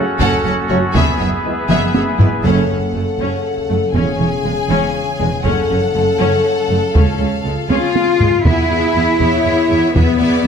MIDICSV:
0, 0, Header, 1, 10, 480
1, 0, Start_track
1, 0, Key_signature, 3, "minor"
1, 0, Tempo, 500000
1, 909, Time_signature, 6, 3, 24, 8
1, 10051, End_track
2, 0, Start_track
2, 0, Title_t, "Violin section"
2, 0, Program_c, 0, 48
2, 194, Note_on_c, 0, 78, 63
2, 415, Note_off_c, 0, 78, 0
2, 435, Note_on_c, 0, 78, 47
2, 511, Note_off_c, 0, 78, 0
2, 666, Note_on_c, 0, 73, 55
2, 743, Note_off_c, 0, 73, 0
2, 907, Note_on_c, 0, 76, 53
2, 1131, Note_off_c, 0, 76, 0
2, 1154, Note_on_c, 0, 76, 38
2, 1231, Note_off_c, 0, 76, 0
2, 1630, Note_on_c, 0, 76, 54
2, 1853, Note_off_c, 0, 76, 0
2, 1865, Note_on_c, 0, 76, 36
2, 1941, Note_off_c, 0, 76, 0
2, 2111, Note_on_c, 0, 71, 40
2, 2188, Note_off_c, 0, 71, 0
2, 2340, Note_on_c, 0, 78, 44
2, 3746, Note_off_c, 0, 78, 0
2, 3783, Note_on_c, 0, 80, 50
2, 5197, Note_off_c, 0, 80, 0
2, 5231, Note_on_c, 0, 78, 51
2, 6641, Note_off_c, 0, 78, 0
2, 6671, Note_on_c, 0, 77, 43
2, 7893, Note_off_c, 0, 77, 0
2, 8112, Note_on_c, 0, 76, 40
2, 8346, Note_off_c, 0, 76, 0
2, 8361, Note_on_c, 0, 76, 41
2, 8585, Note_off_c, 0, 76, 0
2, 8597, Note_on_c, 0, 76, 36
2, 8828, Note_off_c, 0, 76, 0
2, 8842, Note_on_c, 0, 76, 44
2, 9059, Note_off_c, 0, 76, 0
2, 9070, Note_on_c, 0, 76, 42
2, 9297, Note_off_c, 0, 76, 0
2, 9308, Note_on_c, 0, 76, 42
2, 9540, Note_off_c, 0, 76, 0
2, 9551, Note_on_c, 0, 76, 41
2, 9774, Note_off_c, 0, 76, 0
2, 9786, Note_on_c, 0, 76, 48
2, 10020, Note_off_c, 0, 76, 0
2, 10051, End_track
3, 0, Start_track
3, 0, Title_t, "Pipe organ"
3, 0, Program_c, 1, 19
3, 0, Note_on_c, 1, 61, 70
3, 0, Note_on_c, 1, 66, 69
3, 0, Note_on_c, 1, 69, 63
3, 0, Note_on_c, 1, 78, 67
3, 914, Note_off_c, 1, 66, 0
3, 915, Note_off_c, 1, 69, 0
3, 917, Note_off_c, 1, 61, 0
3, 917, Note_on_c, 1, 68, 51
3, 917, Note_on_c, 1, 76, 45
3, 918, Note_off_c, 1, 78, 0
3, 918, Note_on_c, 1, 59, 53
3, 919, Note_on_c, 1, 71, 48
3, 2353, Note_off_c, 1, 59, 0
3, 2353, Note_off_c, 1, 68, 0
3, 2353, Note_off_c, 1, 76, 0
3, 2354, Note_off_c, 1, 71, 0
3, 10051, End_track
4, 0, Start_track
4, 0, Title_t, "Violin section"
4, 0, Program_c, 2, 48
4, 182, Note_on_c, 2, 69, 67
4, 408, Note_off_c, 2, 69, 0
4, 429, Note_on_c, 2, 69, 45
4, 506, Note_off_c, 2, 69, 0
4, 657, Note_on_c, 2, 66, 43
4, 734, Note_off_c, 2, 66, 0
4, 898, Note_on_c, 2, 68, 54
4, 1126, Note_off_c, 2, 68, 0
4, 1146, Note_on_c, 2, 68, 39
4, 1223, Note_off_c, 2, 68, 0
4, 1622, Note_on_c, 2, 68, 53
4, 1848, Note_off_c, 2, 68, 0
4, 1862, Note_on_c, 2, 68, 41
4, 1939, Note_off_c, 2, 68, 0
4, 2093, Note_on_c, 2, 64, 40
4, 2170, Note_off_c, 2, 64, 0
4, 2346, Note_on_c, 2, 69, 47
4, 3749, Note_off_c, 2, 69, 0
4, 3785, Note_on_c, 2, 68, 44
4, 5227, Note_off_c, 2, 68, 0
4, 5239, Note_on_c, 2, 69, 59
4, 7393, Note_on_c, 2, 68, 45
4, 7394, Note_off_c, 2, 69, 0
4, 7919, Note_off_c, 2, 68, 0
4, 8118, Note_on_c, 2, 68, 48
4, 8795, Note_off_c, 2, 68, 0
4, 8834, Note_on_c, 2, 73, 51
4, 9551, Note_off_c, 2, 73, 0
4, 9554, Note_on_c, 2, 71, 48
4, 9791, Note_off_c, 2, 71, 0
4, 9796, Note_on_c, 2, 74, 58
4, 10032, Note_off_c, 2, 74, 0
4, 10051, End_track
5, 0, Start_track
5, 0, Title_t, "French horn section"
5, 0, Program_c, 3, 60
5, 666, Note_on_c, 3, 57, 52
5, 670, Note_on_c, 3, 66, 59
5, 751, Note_off_c, 3, 57, 0
5, 753, Note_off_c, 3, 66, 0
5, 1387, Note_on_c, 3, 64, 44
5, 1388, Note_on_c, 3, 59, 43
5, 1472, Note_off_c, 3, 59, 0
5, 1472, Note_off_c, 3, 64, 0
5, 2097, Note_on_c, 3, 59, 43
5, 2098, Note_on_c, 3, 64, 45
5, 2185, Note_off_c, 3, 59, 0
5, 2185, Note_off_c, 3, 64, 0
5, 2338, Note_on_c, 3, 49, 54
5, 2340, Note_on_c, 3, 69, 50
5, 3746, Note_off_c, 3, 69, 0
5, 3793, Note_on_c, 3, 68, 47
5, 5185, Note_off_c, 3, 49, 0
5, 5202, Note_off_c, 3, 68, 0
5, 5223, Note_on_c, 3, 49, 52
5, 5227, Note_on_c, 3, 69, 51
5, 6668, Note_off_c, 3, 69, 0
5, 6671, Note_on_c, 3, 65, 41
5, 7347, Note_off_c, 3, 49, 0
5, 7376, Note_off_c, 3, 65, 0
5, 7390, Note_on_c, 3, 65, 57
5, 8071, Note_off_c, 3, 65, 0
5, 8119, Note_on_c, 3, 64, 61
5, 9388, Note_off_c, 3, 64, 0
5, 9551, Note_on_c, 3, 59, 57
5, 10051, Note_off_c, 3, 59, 0
5, 10051, End_track
6, 0, Start_track
6, 0, Title_t, "Viola section"
6, 0, Program_c, 4, 48
6, 192, Note_on_c, 4, 61, 64
6, 414, Note_off_c, 4, 61, 0
6, 438, Note_on_c, 4, 61, 41
6, 515, Note_off_c, 4, 61, 0
6, 684, Note_on_c, 4, 61, 42
6, 760, Note_off_c, 4, 61, 0
6, 909, Note_on_c, 4, 59, 57
6, 1132, Note_off_c, 4, 59, 0
6, 1153, Note_on_c, 4, 59, 35
6, 1230, Note_off_c, 4, 59, 0
6, 1632, Note_on_c, 4, 59, 55
6, 1854, Note_off_c, 4, 59, 0
6, 1870, Note_on_c, 4, 59, 36
6, 1947, Note_off_c, 4, 59, 0
6, 2111, Note_on_c, 4, 59, 38
6, 2188, Note_off_c, 4, 59, 0
6, 2352, Note_on_c, 4, 61, 62
6, 2574, Note_off_c, 4, 61, 0
6, 2587, Note_on_c, 4, 61, 37
6, 2663, Note_off_c, 4, 61, 0
6, 2829, Note_on_c, 4, 57, 32
6, 2905, Note_off_c, 4, 57, 0
6, 3069, Note_on_c, 4, 61, 50
6, 3292, Note_off_c, 4, 61, 0
6, 3543, Note_on_c, 4, 57, 34
6, 3620, Note_off_c, 4, 57, 0
6, 3781, Note_on_c, 4, 61, 46
6, 4008, Note_off_c, 4, 61, 0
6, 4026, Note_on_c, 4, 61, 42
6, 4103, Note_off_c, 4, 61, 0
6, 4265, Note_on_c, 4, 56, 35
6, 4342, Note_off_c, 4, 56, 0
6, 4501, Note_on_c, 4, 61, 62
6, 4728, Note_off_c, 4, 61, 0
6, 4987, Note_on_c, 4, 56, 41
6, 5064, Note_off_c, 4, 56, 0
6, 5219, Note_on_c, 4, 61, 57
6, 5447, Note_off_c, 4, 61, 0
6, 5465, Note_on_c, 4, 61, 37
6, 5542, Note_off_c, 4, 61, 0
6, 5711, Note_on_c, 4, 57, 38
6, 5788, Note_off_c, 4, 57, 0
6, 5941, Note_on_c, 4, 61, 64
6, 6168, Note_off_c, 4, 61, 0
6, 6431, Note_on_c, 4, 57, 38
6, 6508, Note_off_c, 4, 57, 0
6, 6667, Note_on_c, 4, 61, 42
6, 6891, Note_off_c, 4, 61, 0
6, 6910, Note_on_c, 4, 61, 38
6, 6987, Note_off_c, 4, 61, 0
6, 7151, Note_on_c, 4, 56, 34
6, 7227, Note_off_c, 4, 56, 0
6, 7389, Note_on_c, 4, 61, 49
6, 7612, Note_off_c, 4, 61, 0
6, 7872, Note_on_c, 4, 56, 44
6, 7948, Note_off_c, 4, 56, 0
6, 8106, Note_on_c, 4, 68, 42
6, 8108, Note_on_c, 4, 59, 46
6, 8343, Note_off_c, 4, 59, 0
6, 8343, Note_off_c, 4, 68, 0
6, 8354, Note_on_c, 4, 68, 43
6, 8357, Note_on_c, 4, 59, 45
6, 8577, Note_off_c, 4, 59, 0
6, 8578, Note_off_c, 4, 68, 0
6, 8589, Note_on_c, 4, 59, 37
6, 8590, Note_on_c, 4, 68, 39
6, 8816, Note_off_c, 4, 59, 0
6, 8818, Note_off_c, 4, 68, 0
6, 8828, Note_on_c, 4, 59, 48
6, 8829, Note_on_c, 4, 68, 49
6, 9052, Note_off_c, 4, 68, 0
6, 9058, Note_off_c, 4, 59, 0
6, 9063, Note_on_c, 4, 68, 42
6, 9069, Note_on_c, 4, 59, 42
6, 9296, Note_off_c, 4, 59, 0
6, 9296, Note_off_c, 4, 68, 0
6, 9307, Note_on_c, 4, 68, 40
6, 9308, Note_on_c, 4, 59, 38
6, 9537, Note_off_c, 4, 59, 0
6, 9537, Note_off_c, 4, 68, 0
6, 9548, Note_on_c, 4, 68, 44
6, 9549, Note_on_c, 4, 59, 44
6, 9773, Note_off_c, 4, 59, 0
6, 9779, Note_off_c, 4, 68, 0
6, 9785, Note_on_c, 4, 59, 45
6, 9791, Note_on_c, 4, 68, 42
6, 10021, Note_off_c, 4, 68, 0
6, 10022, Note_off_c, 4, 59, 0
6, 10051, End_track
7, 0, Start_track
7, 0, Title_t, "Trombone section"
7, 0, Program_c, 5, 61
7, 667, Note_on_c, 5, 49, 50
7, 671, Note_on_c, 5, 54, 56
7, 752, Note_off_c, 5, 49, 0
7, 754, Note_off_c, 5, 54, 0
7, 1375, Note_on_c, 5, 52, 49
7, 1375, Note_on_c, 5, 56, 49
7, 1463, Note_off_c, 5, 52, 0
7, 1464, Note_off_c, 5, 56, 0
7, 2099, Note_on_c, 5, 52, 47
7, 2102, Note_on_c, 5, 56, 49
7, 2186, Note_off_c, 5, 52, 0
7, 2188, Note_off_c, 5, 56, 0
7, 10051, End_track
8, 0, Start_track
8, 0, Title_t, "Cello section"
8, 0, Program_c, 6, 48
8, 191, Note_on_c, 6, 42, 58
8, 268, Note_off_c, 6, 42, 0
8, 432, Note_on_c, 6, 42, 48
8, 508, Note_off_c, 6, 42, 0
8, 672, Note_on_c, 6, 42, 46
8, 749, Note_off_c, 6, 42, 0
8, 907, Note_on_c, 6, 42, 53
8, 983, Note_off_c, 6, 42, 0
8, 1152, Note_on_c, 6, 42, 39
8, 1229, Note_off_c, 6, 42, 0
8, 1627, Note_on_c, 6, 42, 57
8, 1704, Note_off_c, 6, 42, 0
8, 1870, Note_on_c, 6, 42, 41
8, 1946, Note_off_c, 6, 42, 0
8, 2109, Note_on_c, 6, 42, 43
8, 2186, Note_off_c, 6, 42, 0
8, 2347, Note_on_c, 6, 42, 65
8, 2571, Note_off_c, 6, 42, 0
8, 2585, Note_on_c, 6, 42, 30
8, 2662, Note_off_c, 6, 42, 0
8, 2830, Note_on_c, 6, 42, 32
8, 2907, Note_off_c, 6, 42, 0
8, 3070, Note_on_c, 6, 42, 44
8, 3147, Note_off_c, 6, 42, 0
8, 3547, Note_on_c, 6, 42, 39
8, 3624, Note_off_c, 6, 42, 0
8, 3789, Note_on_c, 6, 40, 56
8, 3866, Note_off_c, 6, 40, 0
8, 4029, Note_on_c, 6, 40, 36
8, 4106, Note_off_c, 6, 40, 0
8, 4274, Note_on_c, 6, 40, 39
8, 4350, Note_off_c, 6, 40, 0
8, 4505, Note_on_c, 6, 40, 59
8, 4581, Note_off_c, 6, 40, 0
8, 4990, Note_on_c, 6, 40, 47
8, 5067, Note_off_c, 6, 40, 0
8, 5230, Note_on_c, 6, 42, 58
8, 5306, Note_off_c, 6, 42, 0
8, 5469, Note_on_c, 6, 42, 42
8, 5545, Note_off_c, 6, 42, 0
8, 5705, Note_on_c, 6, 42, 43
8, 5782, Note_off_c, 6, 42, 0
8, 5945, Note_on_c, 6, 42, 54
8, 6022, Note_off_c, 6, 42, 0
8, 6428, Note_on_c, 6, 42, 38
8, 6505, Note_off_c, 6, 42, 0
8, 6670, Note_on_c, 6, 37, 52
8, 6747, Note_off_c, 6, 37, 0
8, 6912, Note_on_c, 6, 37, 32
8, 6989, Note_off_c, 6, 37, 0
8, 7154, Note_on_c, 6, 37, 34
8, 7231, Note_off_c, 6, 37, 0
8, 7393, Note_on_c, 6, 37, 51
8, 7394, Note_on_c, 6, 65, 59
8, 7470, Note_off_c, 6, 37, 0
8, 7873, Note_on_c, 6, 37, 36
8, 7950, Note_off_c, 6, 37, 0
8, 8073, Note_off_c, 6, 65, 0
8, 8114, Note_on_c, 6, 64, 70
8, 9551, Note_on_c, 6, 59, 58
8, 9552, Note_off_c, 6, 64, 0
8, 10051, Note_off_c, 6, 59, 0
8, 10051, End_track
9, 0, Start_track
9, 0, Title_t, "Double bass section"
9, 0, Program_c, 7, 48
9, 188, Note_on_c, 7, 30, 68
9, 265, Note_off_c, 7, 30, 0
9, 426, Note_on_c, 7, 30, 47
9, 503, Note_off_c, 7, 30, 0
9, 667, Note_on_c, 7, 30, 40
9, 744, Note_off_c, 7, 30, 0
9, 906, Note_on_c, 7, 30, 59
9, 983, Note_off_c, 7, 30, 0
9, 1150, Note_on_c, 7, 30, 40
9, 1227, Note_off_c, 7, 30, 0
9, 1629, Note_on_c, 7, 30, 54
9, 1706, Note_off_c, 7, 30, 0
9, 1868, Note_on_c, 7, 30, 37
9, 1945, Note_off_c, 7, 30, 0
9, 2102, Note_on_c, 7, 30, 37
9, 2178, Note_off_c, 7, 30, 0
9, 2342, Note_on_c, 7, 30, 64
9, 2569, Note_off_c, 7, 30, 0
9, 2582, Note_on_c, 7, 30, 33
9, 2659, Note_off_c, 7, 30, 0
9, 2822, Note_on_c, 7, 30, 32
9, 2899, Note_off_c, 7, 30, 0
9, 3066, Note_on_c, 7, 30, 45
9, 3142, Note_off_c, 7, 30, 0
9, 3552, Note_on_c, 7, 30, 37
9, 3629, Note_off_c, 7, 30, 0
9, 3786, Note_on_c, 7, 28, 58
9, 3863, Note_off_c, 7, 28, 0
9, 4022, Note_on_c, 7, 28, 40
9, 4099, Note_off_c, 7, 28, 0
9, 4266, Note_on_c, 7, 28, 39
9, 4342, Note_off_c, 7, 28, 0
9, 4508, Note_on_c, 7, 28, 60
9, 4584, Note_off_c, 7, 28, 0
9, 4992, Note_on_c, 7, 28, 43
9, 5069, Note_off_c, 7, 28, 0
9, 5240, Note_on_c, 7, 30, 66
9, 5317, Note_off_c, 7, 30, 0
9, 5473, Note_on_c, 7, 30, 42
9, 5550, Note_off_c, 7, 30, 0
9, 5712, Note_on_c, 7, 30, 39
9, 5789, Note_off_c, 7, 30, 0
9, 5949, Note_on_c, 7, 30, 63
9, 6026, Note_off_c, 7, 30, 0
9, 6432, Note_on_c, 7, 30, 33
9, 6509, Note_off_c, 7, 30, 0
9, 6672, Note_on_c, 7, 37, 52
9, 6749, Note_off_c, 7, 37, 0
9, 6901, Note_on_c, 7, 37, 36
9, 6978, Note_off_c, 7, 37, 0
9, 7150, Note_on_c, 7, 37, 33
9, 7226, Note_off_c, 7, 37, 0
9, 7385, Note_on_c, 7, 37, 49
9, 7462, Note_off_c, 7, 37, 0
9, 7877, Note_on_c, 7, 37, 32
9, 7954, Note_off_c, 7, 37, 0
9, 8115, Note_on_c, 7, 40, 51
9, 8192, Note_off_c, 7, 40, 0
9, 8343, Note_on_c, 7, 40, 46
9, 8419, Note_off_c, 7, 40, 0
9, 8591, Note_on_c, 7, 40, 44
9, 8668, Note_off_c, 7, 40, 0
9, 8828, Note_on_c, 7, 40, 45
9, 8905, Note_off_c, 7, 40, 0
9, 9065, Note_on_c, 7, 40, 43
9, 9142, Note_off_c, 7, 40, 0
9, 9310, Note_on_c, 7, 40, 44
9, 9387, Note_off_c, 7, 40, 0
9, 9550, Note_on_c, 7, 40, 55
9, 9627, Note_off_c, 7, 40, 0
9, 9786, Note_on_c, 7, 40, 47
9, 9863, Note_off_c, 7, 40, 0
9, 10051, End_track
10, 0, Start_track
10, 0, Title_t, "Taiko and cinematic ensemble drums"
10, 194, Note_on_c, 9, 41, 73
10, 290, Note_off_c, 9, 41, 0
10, 907, Note_on_c, 9, 41, 95
10, 1003, Note_off_c, 9, 41, 0
10, 1626, Note_on_c, 9, 47, 64
10, 1722, Note_off_c, 9, 47, 0
10, 1867, Note_on_c, 9, 48, 76
10, 1963, Note_off_c, 9, 48, 0
10, 2105, Note_on_c, 9, 43, 73
10, 2201, Note_off_c, 9, 43, 0
10, 2346, Note_on_c, 9, 41, 46
10, 2442, Note_off_c, 9, 41, 0
10, 3432, Note_on_c, 9, 41, 29
10, 3528, Note_off_c, 9, 41, 0
10, 5235, Note_on_c, 9, 41, 59
10, 5331, Note_off_c, 9, 41, 0
10, 6676, Note_on_c, 9, 41, 80
10, 6772, Note_off_c, 9, 41, 0
10, 7395, Note_on_c, 9, 48, 61
10, 7491, Note_off_c, 9, 48, 0
10, 7636, Note_on_c, 9, 48, 65
10, 7732, Note_off_c, 9, 48, 0
10, 7875, Note_on_c, 9, 43, 77
10, 7971, Note_off_c, 9, 43, 0
10, 8113, Note_on_c, 9, 41, 89
10, 8209, Note_off_c, 9, 41, 0
10, 8833, Note_on_c, 9, 41, 68
10, 8929, Note_off_c, 9, 41, 0
10, 9553, Note_on_c, 9, 41, 89
10, 9649, Note_off_c, 9, 41, 0
10, 10051, End_track
0, 0, End_of_file